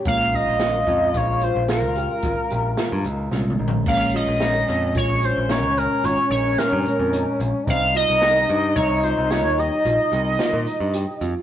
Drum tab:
CC |------------------------------------------|x-----------------------------------------|------------------------------------------|
HH |x--x--x--x--x--x--x--x--x--x--x--x--------|---x--x--x--x--x--x--x--x--x--x--x--x--x--|x--x--x--x--x--x--x--x--x--x--x--x--x--x--|
SD |------o-----------o-----------o-----o-----|---o--o--o--------o-----------o-----------|------o-----------o-----------o-----------|
T2 |--------------------------------------o---|------------------------------------------|------------------------------------------|
FT |----------------------------------------o-|------------------------------------------|------------------------------------------|
BD |o--o-----o--o-----------o-----------------|o-----------o-----------------------------|o-----------o-----------------------------|